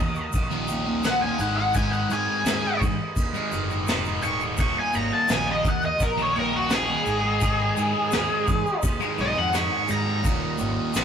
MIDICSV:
0, 0, Header, 1, 8, 480
1, 0, Start_track
1, 0, Tempo, 707547
1, 1188, Time_signature, 4, 2, 24, 8
1, 7493, End_track
2, 0, Start_track
2, 0, Title_t, "Lead electric guitar"
2, 0, Program_c, 0, 29
2, 714, Note_on_c, 0, 78, 93
2, 825, Note_off_c, 0, 78, 0
2, 828, Note_on_c, 0, 80, 100
2, 954, Note_off_c, 0, 80, 0
2, 954, Note_on_c, 0, 78, 86
2, 1055, Note_off_c, 0, 78, 0
2, 1063, Note_on_c, 0, 78, 90
2, 1182, Note_off_c, 0, 78, 0
2, 1189, Note_on_c, 0, 80, 91
2, 1303, Note_off_c, 0, 80, 0
2, 1306, Note_on_c, 0, 78, 86
2, 1423, Note_off_c, 0, 78, 0
2, 1442, Note_on_c, 0, 80, 105
2, 1900, Note_off_c, 0, 80, 0
2, 2872, Note_on_c, 0, 85, 104
2, 2986, Note_off_c, 0, 85, 0
2, 3122, Note_on_c, 0, 85, 85
2, 3232, Note_off_c, 0, 85, 0
2, 3252, Note_on_c, 0, 80, 87
2, 3357, Note_off_c, 0, 80, 0
2, 3357, Note_on_c, 0, 82, 81
2, 3469, Note_off_c, 0, 82, 0
2, 3482, Note_on_c, 0, 81, 78
2, 3609, Note_off_c, 0, 81, 0
2, 3609, Note_on_c, 0, 80, 86
2, 3715, Note_off_c, 0, 80, 0
2, 3745, Note_on_c, 0, 75, 86
2, 3843, Note_off_c, 0, 75, 0
2, 3859, Note_on_c, 0, 78, 79
2, 3960, Note_off_c, 0, 78, 0
2, 3970, Note_on_c, 0, 75, 87
2, 4076, Note_off_c, 0, 75, 0
2, 4093, Note_on_c, 0, 70, 89
2, 4197, Note_off_c, 0, 70, 0
2, 4224, Note_on_c, 0, 73, 87
2, 4332, Note_off_c, 0, 73, 0
2, 4332, Note_on_c, 0, 70, 88
2, 4437, Note_off_c, 0, 70, 0
2, 4453, Note_on_c, 0, 66, 81
2, 4557, Note_off_c, 0, 66, 0
2, 4568, Note_on_c, 0, 68, 99
2, 5971, Note_off_c, 0, 68, 0
2, 6248, Note_on_c, 0, 75, 93
2, 6362, Note_off_c, 0, 75, 0
2, 6362, Note_on_c, 0, 78, 96
2, 6470, Note_on_c, 0, 85, 98
2, 6472, Note_off_c, 0, 78, 0
2, 6702, Note_off_c, 0, 85, 0
2, 6721, Note_on_c, 0, 82, 106
2, 6948, Note_off_c, 0, 82, 0
2, 7493, End_track
3, 0, Start_track
3, 0, Title_t, "Transistor combo organ"
3, 0, Program_c, 1, 18
3, 0, Note_on_c, 1, 58, 60
3, 0, Note_on_c, 1, 63, 57
3, 0, Note_on_c, 1, 66, 53
3, 0, Note_on_c, 1, 75, 71
3, 931, Note_off_c, 1, 58, 0
3, 935, Note_off_c, 1, 66, 0
3, 955, Note_on_c, 1, 71, 69
3, 964, Note_on_c, 1, 68, 54
3, 3089, Note_off_c, 1, 71, 0
3, 3094, Note_off_c, 1, 68, 0
3, 3112, Note_on_c, 1, 66, 59
3, 3119, Note_on_c, 1, 58, 58
3, 4762, Note_off_c, 1, 63, 0
3, 4773, Note_off_c, 1, 66, 0
3, 4777, Note_off_c, 1, 58, 0
3, 4790, Note_on_c, 1, 63, 62
3, 4790, Note_on_c, 1, 71, 60
3, 4791, Note_on_c, 1, 68, 57
3, 6928, Note_off_c, 1, 71, 0
3, 6929, Note_off_c, 1, 68, 0
3, 6950, Note_on_c, 1, 58, 65
3, 6950, Note_on_c, 1, 66, 57
3, 7493, Note_off_c, 1, 58, 0
3, 7493, Note_off_c, 1, 63, 0
3, 7493, Note_off_c, 1, 66, 0
3, 7493, Note_off_c, 1, 75, 0
3, 7493, End_track
4, 0, Start_track
4, 0, Title_t, "Distorted electric guitar"
4, 0, Program_c, 2, 30
4, 341, Note_on_c, 2, 51, 75
4, 354, Note_on_c, 2, 46, 59
4, 460, Note_off_c, 2, 46, 0
4, 461, Note_on_c, 2, 39, 80
4, 465, Note_off_c, 2, 51, 0
4, 468, Note_on_c, 2, 46, 72
4, 473, Note_on_c, 2, 51, 75
4, 568, Note_off_c, 2, 51, 0
4, 576, Note_on_c, 2, 51, 75
4, 581, Note_off_c, 2, 46, 0
4, 589, Note_on_c, 2, 46, 64
4, 696, Note_off_c, 2, 39, 0
4, 701, Note_off_c, 2, 46, 0
4, 704, Note_on_c, 2, 39, 94
4, 706, Note_off_c, 2, 51, 0
4, 709, Note_on_c, 2, 46, 96
4, 714, Note_on_c, 2, 51, 94
4, 817, Note_off_c, 2, 51, 0
4, 825, Note_on_c, 2, 51, 72
4, 828, Note_off_c, 2, 46, 0
4, 836, Note_on_c, 2, 46, 57
4, 932, Note_off_c, 2, 39, 0
4, 932, Note_off_c, 2, 51, 0
4, 937, Note_off_c, 2, 46, 0
4, 941, Note_on_c, 2, 44, 85
4, 948, Note_on_c, 2, 51, 88
4, 954, Note_on_c, 2, 56, 104
4, 1056, Note_off_c, 2, 56, 0
4, 1064, Note_on_c, 2, 56, 66
4, 1068, Note_off_c, 2, 51, 0
4, 1077, Note_on_c, 2, 51, 56
4, 1175, Note_off_c, 2, 44, 0
4, 1182, Note_off_c, 2, 51, 0
4, 1183, Note_on_c, 2, 44, 85
4, 1189, Note_off_c, 2, 56, 0
4, 1191, Note_on_c, 2, 51, 95
4, 1197, Note_on_c, 2, 56, 101
4, 1416, Note_off_c, 2, 44, 0
4, 1423, Note_off_c, 2, 51, 0
4, 1424, Note_on_c, 2, 44, 77
4, 1426, Note_off_c, 2, 56, 0
4, 1431, Note_on_c, 2, 51, 77
4, 1435, Note_on_c, 2, 56, 78
4, 1653, Note_off_c, 2, 44, 0
4, 1661, Note_on_c, 2, 44, 80
4, 1663, Note_off_c, 2, 51, 0
4, 1669, Note_off_c, 2, 56, 0
4, 1671, Note_on_c, 2, 51, 95
4, 1677, Note_on_c, 2, 56, 92
4, 1774, Note_off_c, 2, 56, 0
4, 1782, Note_on_c, 2, 56, 77
4, 1789, Note_off_c, 2, 51, 0
4, 1797, Note_on_c, 2, 51, 55
4, 1898, Note_off_c, 2, 44, 0
4, 1904, Note_off_c, 2, 51, 0
4, 1906, Note_off_c, 2, 56, 0
4, 2265, Note_on_c, 2, 56, 68
4, 2277, Note_on_c, 2, 51, 58
4, 2388, Note_off_c, 2, 51, 0
4, 2390, Note_on_c, 2, 44, 73
4, 2396, Note_off_c, 2, 56, 0
4, 2396, Note_on_c, 2, 51, 80
4, 2404, Note_on_c, 2, 56, 77
4, 2507, Note_off_c, 2, 56, 0
4, 2515, Note_on_c, 2, 56, 63
4, 2521, Note_off_c, 2, 51, 0
4, 2529, Note_on_c, 2, 51, 59
4, 2618, Note_off_c, 2, 44, 0
4, 2625, Note_off_c, 2, 51, 0
4, 2627, Note_on_c, 2, 44, 83
4, 2631, Note_off_c, 2, 56, 0
4, 2633, Note_on_c, 2, 51, 97
4, 2639, Note_on_c, 2, 56, 96
4, 2742, Note_off_c, 2, 56, 0
4, 2750, Note_on_c, 2, 56, 67
4, 2755, Note_off_c, 2, 51, 0
4, 2763, Note_on_c, 2, 51, 52
4, 2860, Note_off_c, 2, 44, 0
4, 2868, Note_off_c, 2, 51, 0
4, 2868, Note_on_c, 2, 44, 66
4, 2874, Note_off_c, 2, 56, 0
4, 2876, Note_on_c, 2, 51, 75
4, 2883, Note_on_c, 2, 56, 74
4, 2977, Note_off_c, 2, 56, 0
4, 2985, Note_on_c, 2, 56, 70
4, 2991, Note_off_c, 2, 51, 0
4, 2999, Note_on_c, 2, 51, 59
4, 3092, Note_off_c, 2, 56, 0
4, 3094, Note_off_c, 2, 44, 0
4, 3099, Note_off_c, 2, 51, 0
4, 3105, Note_on_c, 2, 39, 90
4, 3110, Note_on_c, 2, 46, 92
4, 3115, Note_on_c, 2, 51, 86
4, 3337, Note_off_c, 2, 39, 0
4, 3343, Note_off_c, 2, 46, 0
4, 3345, Note_on_c, 2, 39, 73
4, 3348, Note_off_c, 2, 51, 0
4, 3351, Note_on_c, 2, 46, 78
4, 3357, Note_on_c, 2, 51, 80
4, 3572, Note_off_c, 2, 39, 0
4, 3580, Note_on_c, 2, 39, 94
4, 3582, Note_off_c, 2, 46, 0
4, 3588, Note_off_c, 2, 51, 0
4, 3590, Note_on_c, 2, 46, 96
4, 3596, Note_on_c, 2, 51, 108
4, 3698, Note_off_c, 2, 51, 0
4, 3706, Note_on_c, 2, 51, 74
4, 3711, Note_off_c, 2, 46, 0
4, 3719, Note_on_c, 2, 46, 51
4, 3820, Note_off_c, 2, 39, 0
4, 3824, Note_off_c, 2, 46, 0
4, 3824, Note_off_c, 2, 51, 0
4, 4185, Note_on_c, 2, 51, 70
4, 4199, Note_on_c, 2, 46, 58
4, 4308, Note_off_c, 2, 46, 0
4, 4310, Note_on_c, 2, 39, 69
4, 4316, Note_off_c, 2, 51, 0
4, 4316, Note_on_c, 2, 46, 78
4, 4324, Note_on_c, 2, 51, 77
4, 4418, Note_off_c, 2, 51, 0
4, 4426, Note_on_c, 2, 51, 66
4, 4433, Note_off_c, 2, 46, 0
4, 4441, Note_on_c, 2, 46, 51
4, 4534, Note_off_c, 2, 39, 0
4, 4542, Note_on_c, 2, 39, 93
4, 4545, Note_off_c, 2, 46, 0
4, 4549, Note_off_c, 2, 51, 0
4, 4553, Note_on_c, 2, 46, 88
4, 4558, Note_on_c, 2, 51, 88
4, 4659, Note_off_c, 2, 51, 0
4, 4667, Note_on_c, 2, 51, 79
4, 4671, Note_off_c, 2, 46, 0
4, 4679, Note_on_c, 2, 46, 61
4, 4771, Note_off_c, 2, 39, 0
4, 4773, Note_off_c, 2, 51, 0
4, 4779, Note_off_c, 2, 46, 0
4, 4785, Note_on_c, 2, 44, 93
4, 4790, Note_on_c, 2, 51, 88
4, 4796, Note_on_c, 2, 56, 99
4, 4898, Note_off_c, 2, 56, 0
4, 4906, Note_on_c, 2, 56, 73
4, 4913, Note_off_c, 2, 51, 0
4, 4921, Note_on_c, 2, 51, 56
4, 5019, Note_off_c, 2, 44, 0
4, 5027, Note_off_c, 2, 51, 0
4, 5027, Note_on_c, 2, 44, 94
4, 5030, Note_off_c, 2, 56, 0
4, 5035, Note_on_c, 2, 51, 91
4, 5039, Note_on_c, 2, 56, 114
4, 5263, Note_off_c, 2, 44, 0
4, 5269, Note_off_c, 2, 51, 0
4, 5271, Note_on_c, 2, 44, 72
4, 5275, Note_off_c, 2, 56, 0
4, 5277, Note_on_c, 2, 51, 87
4, 5283, Note_on_c, 2, 56, 84
4, 5497, Note_off_c, 2, 44, 0
4, 5504, Note_off_c, 2, 51, 0
4, 5505, Note_on_c, 2, 44, 79
4, 5508, Note_off_c, 2, 56, 0
4, 5512, Note_on_c, 2, 51, 92
4, 5517, Note_on_c, 2, 56, 113
4, 5615, Note_off_c, 2, 56, 0
4, 5623, Note_on_c, 2, 56, 79
4, 5625, Note_off_c, 2, 51, 0
4, 5634, Note_on_c, 2, 51, 53
4, 5735, Note_off_c, 2, 44, 0
4, 5735, Note_off_c, 2, 51, 0
4, 5741, Note_off_c, 2, 56, 0
4, 6105, Note_on_c, 2, 56, 76
4, 6118, Note_on_c, 2, 51, 60
4, 6219, Note_on_c, 2, 44, 74
4, 6221, Note_off_c, 2, 51, 0
4, 6224, Note_off_c, 2, 56, 0
4, 6229, Note_on_c, 2, 51, 83
4, 6232, Note_on_c, 2, 56, 83
4, 6333, Note_off_c, 2, 56, 0
4, 6341, Note_on_c, 2, 56, 79
4, 6343, Note_off_c, 2, 51, 0
4, 6351, Note_on_c, 2, 51, 57
4, 6450, Note_off_c, 2, 44, 0
4, 6456, Note_off_c, 2, 51, 0
4, 6458, Note_on_c, 2, 44, 95
4, 6461, Note_off_c, 2, 56, 0
4, 6464, Note_on_c, 2, 51, 99
4, 6469, Note_on_c, 2, 56, 99
4, 6568, Note_off_c, 2, 56, 0
4, 6577, Note_on_c, 2, 56, 80
4, 6579, Note_off_c, 2, 51, 0
4, 6587, Note_on_c, 2, 51, 59
4, 6685, Note_off_c, 2, 44, 0
4, 6693, Note_off_c, 2, 51, 0
4, 6693, Note_on_c, 2, 44, 83
4, 6698, Note_off_c, 2, 56, 0
4, 6701, Note_on_c, 2, 51, 88
4, 6706, Note_on_c, 2, 56, 83
4, 6809, Note_off_c, 2, 56, 0
4, 6817, Note_on_c, 2, 56, 75
4, 6821, Note_off_c, 2, 51, 0
4, 6829, Note_on_c, 2, 51, 65
4, 6927, Note_off_c, 2, 44, 0
4, 6928, Note_off_c, 2, 56, 0
4, 6932, Note_on_c, 2, 39, 86
4, 6935, Note_off_c, 2, 51, 0
4, 6938, Note_on_c, 2, 46, 99
4, 6945, Note_on_c, 2, 51, 106
4, 7170, Note_off_c, 2, 39, 0
4, 7178, Note_on_c, 2, 39, 76
4, 7179, Note_off_c, 2, 46, 0
4, 7183, Note_off_c, 2, 51, 0
4, 7187, Note_on_c, 2, 46, 71
4, 7191, Note_on_c, 2, 51, 81
4, 7406, Note_off_c, 2, 39, 0
4, 7412, Note_off_c, 2, 46, 0
4, 7414, Note_on_c, 2, 39, 86
4, 7420, Note_on_c, 2, 46, 101
4, 7421, Note_off_c, 2, 51, 0
4, 7429, Note_on_c, 2, 51, 113
4, 7493, Note_off_c, 2, 39, 0
4, 7493, Note_off_c, 2, 46, 0
4, 7493, Note_off_c, 2, 51, 0
4, 7493, End_track
5, 0, Start_track
5, 0, Title_t, "Tanpura"
5, 0, Program_c, 3, 104
5, 0, Note_on_c, 3, 46, 65
5, 0, Note_on_c, 3, 51, 57
5, 16, Note_on_c, 3, 39, 52
5, 437, Note_off_c, 3, 46, 0
5, 439, Note_on_c, 3, 46, 60
5, 860, Note_off_c, 3, 51, 0
5, 860, Note_on_c, 3, 51, 67
5, 1270, Note_off_c, 3, 51, 0
5, 1270, Note_on_c, 3, 51, 61
5, 1686, Note_off_c, 3, 39, 0
5, 1689, Note_on_c, 3, 39, 58
5, 2110, Note_off_c, 3, 46, 0
5, 2112, Note_on_c, 3, 46, 64
5, 2518, Note_off_c, 3, 51, 0
5, 2518, Note_on_c, 3, 51, 63
5, 2933, Note_off_c, 3, 51, 0
5, 2933, Note_on_c, 3, 51, 59
5, 3335, Note_off_c, 3, 39, 0
5, 3338, Note_on_c, 3, 39, 59
5, 3765, Note_off_c, 3, 46, 0
5, 3767, Note_on_c, 3, 46, 55
5, 4176, Note_off_c, 3, 51, 0
5, 4176, Note_on_c, 3, 51, 63
5, 4601, Note_off_c, 3, 51, 0
5, 4601, Note_on_c, 3, 51, 59
5, 5014, Note_off_c, 3, 39, 0
5, 5017, Note_on_c, 3, 39, 66
5, 5441, Note_off_c, 3, 46, 0
5, 5443, Note_on_c, 3, 46, 60
5, 5863, Note_off_c, 3, 51, 0
5, 5863, Note_on_c, 3, 51, 56
5, 6265, Note_off_c, 3, 51, 0
5, 6265, Note_on_c, 3, 51, 64
5, 6682, Note_off_c, 3, 39, 0
5, 6685, Note_on_c, 3, 39, 63
5, 7101, Note_off_c, 3, 46, 0
5, 7104, Note_on_c, 3, 46, 58
5, 7493, Note_off_c, 3, 39, 0
5, 7493, Note_off_c, 3, 46, 0
5, 7493, Note_off_c, 3, 51, 0
5, 7493, End_track
6, 0, Start_track
6, 0, Title_t, "Fingered electric bass"
6, 0, Program_c, 4, 33
6, 0, Note_on_c, 4, 39, 81
6, 231, Note_off_c, 4, 39, 0
6, 231, Note_on_c, 4, 34, 83
6, 871, Note_off_c, 4, 34, 0
6, 945, Note_on_c, 4, 32, 94
6, 1373, Note_off_c, 4, 32, 0
6, 1420, Note_on_c, 4, 44, 77
6, 1530, Note_off_c, 4, 44, 0
6, 1662, Note_on_c, 4, 39, 107
6, 1771, Note_off_c, 4, 39, 0
6, 1905, Note_on_c, 4, 44, 76
6, 2013, Note_off_c, 4, 44, 0
6, 2147, Note_on_c, 4, 39, 82
6, 2254, Note_off_c, 4, 39, 0
6, 2390, Note_on_c, 4, 30, 75
6, 2605, Note_off_c, 4, 30, 0
6, 2631, Note_on_c, 4, 29, 77
6, 2846, Note_off_c, 4, 29, 0
6, 2869, Note_on_c, 4, 27, 80
6, 3084, Note_off_c, 4, 27, 0
6, 3109, Note_on_c, 4, 27, 92
6, 3215, Note_off_c, 4, 27, 0
6, 3355, Note_on_c, 4, 32, 79
6, 3459, Note_off_c, 4, 32, 0
6, 3595, Note_on_c, 4, 34, 91
6, 3805, Note_off_c, 4, 34, 0
6, 3830, Note_on_c, 4, 39, 84
6, 4074, Note_off_c, 4, 39, 0
6, 4074, Note_on_c, 4, 34, 82
6, 4712, Note_off_c, 4, 34, 0
6, 4789, Note_on_c, 4, 32, 93
6, 5216, Note_off_c, 4, 32, 0
6, 5270, Note_on_c, 4, 44, 83
6, 5376, Note_off_c, 4, 44, 0
6, 5511, Note_on_c, 4, 39, 96
6, 5617, Note_off_c, 4, 39, 0
6, 5752, Note_on_c, 4, 44, 87
6, 5857, Note_off_c, 4, 44, 0
6, 5988, Note_on_c, 4, 39, 90
6, 6095, Note_off_c, 4, 39, 0
6, 6233, Note_on_c, 4, 35, 90
6, 6338, Note_off_c, 4, 35, 0
6, 6351, Note_on_c, 4, 41, 86
6, 6564, Note_off_c, 4, 41, 0
6, 6711, Note_on_c, 4, 44, 86
6, 6924, Note_off_c, 4, 44, 0
6, 7196, Note_on_c, 4, 32, 91
6, 7300, Note_off_c, 4, 32, 0
6, 7433, Note_on_c, 4, 34, 91
6, 7493, Note_off_c, 4, 34, 0
6, 7493, End_track
7, 0, Start_track
7, 0, Title_t, "Muted distorted electric guitar strokes"
7, 1906, Note_on_c, 9, 29, 40
7, 1974, Note_off_c, 9, 29, 0
7, 3828, Note_on_c, 9, 29, 42
7, 3896, Note_off_c, 9, 29, 0
7, 5743, Note_on_c, 9, 29, 47
7, 5811, Note_off_c, 9, 29, 0
7, 7493, End_track
8, 0, Start_track
8, 0, Title_t, "Drums"
8, 103, Note_on_c, 9, 82, 27
8, 171, Note_off_c, 9, 82, 0
8, 222, Note_on_c, 9, 82, 82
8, 230, Note_on_c, 9, 36, 83
8, 231, Note_on_c, 9, 51, 86
8, 290, Note_off_c, 9, 82, 0
8, 298, Note_off_c, 9, 36, 0
8, 299, Note_off_c, 9, 51, 0
8, 346, Note_on_c, 9, 82, 26
8, 414, Note_off_c, 9, 82, 0
8, 460, Note_on_c, 9, 82, 70
8, 470, Note_on_c, 9, 51, 64
8, 528, Note_off_c, 9, 82, 0
8, 538, Note_off_c, 9, 51, 0
8, 702, Note_on_c, 9, 82, 82
8, 706, Note_on_c, 9, 51, 90
8, 712, Note_on_c, 9, 38, 110
8, 770, Note_off_c, 9, 82, 0
8, 774, Note_off_c, 9, 51, 0
8, 780, Note_off_c, 9, 38, 0
8, 944, Note_on_c, 9, 82, 65
8, 951, Note_on_c, 9, 51, 71
8, 1011, Note_off_c, 9, 82, 0
8, 1019, Note_off_c, 9, 51, 0
8, 1179, Note_on_c, 9, 82, 94
8, 1187, Note_on_c, 9, 36, 96
8, 1187, Note_on_c, 9, 51, 87
8, 1247, Note_off_c, 9, 82, 0
8, 1254, Note_off_c, 9, 36, 0
8, 1255, Note_off_c, 9, 51, 0
8, 1306, Note_on_c, 9, 82, 27
8, 1374, Note_off_c, 9, 82, 0
8, 1426, Note_on_c, 9, 82, 58
8, 1430, Note_on_c, 9, 51, 62
8, 1494, Note_off_c, 9, 82, 0
8, 1497, Note_off_c, 9, 51, 0
8, 1666, Note_on_c, 9, 51, 83
8, 1668, Note_on_c, 9, 82, 93
8, 1672, Note_on_c, 9, 38, 105
8, 1734, Note_off_c, 9, 51, 0
8, 1736, Note_off_c, 9, 82, 0
8, 1740, Note_off_c, 9, 38, 0
8, 1908, Note_on_c, 9, 36, 81
8, 1908, Note_on_c, 9, 51, 72
8, 1915, Note_on_c, 9, 82, 65
8, 1975, Note_off_c, 9, 36, 0
8, 1976, Note_off_c, 9, 51, 0
8, 1982, Note_off_c, 9, 82, 0
8, 2146, Note_on_c, 9, 36, 82
8, 2146, Note_on_c, 9, 51, 101
8, 2146, Note_on_c, 9, 82, 91
8, 2214, Note_off_c, 9, 36, 0
8, 2214, Note_off_c, 9, 51, 0
8, 2214, Note_off_c, 9, 82, 0
8, 2271, Note_on_c, 9, 82, 27
8, 2339, Note_off_c, 9, 82, 0
8, 2387, Note_on_c, 9, 82, 74
8, 2389, Note_on_c, 9, 51, 69
8, 2455, Note_off_c, 9, 82, 0
8, 2457, Note_off_c, 9, 51, 0
8, 2512, Note_on_c, 9, 82, 28
8, 2580, Note_off_c, 9, 82, 0
8, 2629, Note_on_c, 9, 82, 90
8, 2632, Note_on_c, 9, 51, 98
8, 2638, Note_on_c, 9, 38, 111
8, 2697, Note_off_c, 9, 82, 0
8, 2700, Note_off_c, 9, 51, 0
8, 2706, Note_off_c, 9, 38, 0
8, 2747, Note_on_c, 9, 82, 25
8, 2815, Note_off_c, 9, 82, 0
8, 2866, Note_on_c, 9, 82, 66
8, 2870, Note_on_c, 9, 51, 68
8, 2934, Note_off_c, 9, 82, 0
8, 2938, Note_off_c, 9, 51, 0
8, 2987, Note_on_c, 9, 82, 25
8, 3054, Note_off_c, 9, 82, 0
8, 3103, Note_on_c, 9, 82, 85
8, 3110, Note_on_c, 9, 51, 83
8, 3111, Note_on_c, 9, 36, 102
8, 3171, Note_off_c, 9, 82, 0
8, 3178, Note_off_c, 9, 51, 0
8, 3179, Note_off_c, 9, 36, 0
8, 3345, Note_on_c, 9, 82, 61
8, 3352, Note_on_c, 9, 51, 66
8, 3413, Note_off_c, 9, 82, 0
8, 3420, Note_off_c, 9, 51, 0
8, 3584, Note_on_c, 9, 82, 102
8, 3589, Note_on_c, 9, 51, 90
8, 3595, Note_on_c, 9, 38, 95
8, 3652, Note_off_c, 9, 82, 0
8, 3657, Note_off_c, 9, 51, 0
8, 3663, Note_off_c, 9, 38, 0
8, 3829, Note_on_c, 9, 51, 63
8, 3831, Note_on_c, 9, 36, 90
8, 3832, Note_on_c, 9, 82, 61
8, 3897, Note_off_c, 9, 51, 0
8, 3899, Note_off_c, 9, 36, 0
8, 3900, Note_off_c, 9, 82, 0
8, 3950, Note_on_c, 9, 82, 27
8, 4018, Note_off_c, 9, 82, 0
8, 4070, Note_on_c, 9, 51, 82
8, 4070, Note_on_c, 9, 82, 95
8, 4072, Note_on_c, 9, 36, 78
8, 4138, Note_off_c, 9, 51, 0
8, 4138, Note_off_c, 9, 82, 0
8, 4139, Note_off_c, 9, 36, 0
8, 4193, Note_on_c, 9, 82, 28
8, 4261, Note_off_c, 9, 82, 0
8, 4311, Note_on_c, 9, 51, 61
8, 4378, Note_off_c, 9, 51, 0
8, 4543, Note_on_c, 9, 51, 88
8, 4547, Note_on_c, 9, 82, 88
8, 4550, Note_on_c, 9, 38, 108
8, 4611, Note_off_c, 9, 51, 0
8, 4614, Note_off_c, 9, 82, 0
8, 4617, Note_off_c, 9, 38, 0
8, 4789, Note_on_c, 9, 82, 67
8, 4794, Note_on_c, 9, 51, 65
8, 4857, Note_off_c, 9, 82, 0
8, 4862, Note_off_c, 9, 51, 0
8, 5024, Note_on_c, 9, 82, 96
8, 5029, Note_on_c, 9, 51, 81
8, 5032, Note_on_c, 9, 36, 92
8, 5092, Note_off_c, 9, 82, 0
8, 5097, Note_off_c, 9, 51, 0
8, 5100, Note_off_c, 9, 36, 0
8, 5269, Note_on_c, 9, 82, 73
8, 5271, Note_on_c, 9, 51, 63
8, 5337, Note_off_c, 9, 82, 0
8, 5339, Note_off_c, 9, 51, 0
8, 5505, Note_on_c, 9, 82, 90
8, 5510, Note_on_c, 9, 51, 89
8, 5516, Note_on_c, 9, 38, 110
8, 5573, Note_off_c, 9, 82, 0
8, 5578, Note_off_c, 9, 51, 0
8, 5584, Note_off_c, 9, 38, 0
8, 5750, Note_on_c, 9, 82, 64
8, 5751, Note_on_c, 9, 36, 82
8, 5751, Note_on_c, 9, 51, 72
8, 5818, Note_off_c, 9, 82, 0
8, 5819, Note_off_c, 9, 36, 0
8, 5819, Note_off_c, 9, 51, 0
8, 5876, Note_on_c, 9, 82, 27
8, 5944, Note_off_c, 9, 82, 0
8, 5987, Note_on_c, 9, 51, 95
8, 5987, Note_on_c, 9, 82, 96
8, 5991, Note_on_c, 9, 36, 85
8, 6055, Note_off_c, 9, 51, 0
8, 6055, Note_off_c, 9, 82, 0
8, 6059, Note_off_c, 9, 36, 0
8, 6110, Note_on_c, 9, 82, 29
8, 6178, Note_off_c, 9, 82, 0
8, 6226, Note_on_c, 9, 51, 73
8, 6294, Note_off_c, 9, 51, 0
8, 6467, Note_on_c, 9, 82, 101
8, 6471, Note_on_c, 9, 51, 101
8, 6477, Note_on_c, 9, 38, 115
8, 6535, Note_off_c, 9, 82, 0
8, 6538, Note_off_c, 9, 51, 0
8, 6545, Note_off_c, 9, 38, 0
8, 6705, Note_on_c, 9, 82, 75
8, 6713, Note_on_c, 9, 51, 78
8, 6772, Note_off_c, 9, 82, 0
8, 6781, Note_off_c, 9, 51, 0
8, 6949, Note_on_c, 9, 82, 99
8, 6952, Note_on_c, 9, 51, 89
8, 6953, Note_on_c, 9, 36, 102
8, 7017, Note_off_c, 9, 82, 0
8, 7020, Note_off_c, 9, 51, 0
8, 7021, Note_off_c, 9, 36, 0
8, 7179, Note_on_c, 9, 82, 77
8, 7192, Note_on_c, 9, 51, 61
8, 7246, Note_off_c, 9, 82, 0
8, 7259, Note_off_c, 9, 51, 0
8, 7421, Note_on_c, 9, 82, 99
8, 7431, Note_on_c, 9, 51, 91
8, 7437, Note_on_c, 9, 38, 110
8, 7489, Note_off_c, 9, 82, 0
8, 7493, Note_off_c, 9, 38, 0
8, 7493, Note_off_c, 9, 51, 0
8, 7493, End_track
0, 0, End_of_file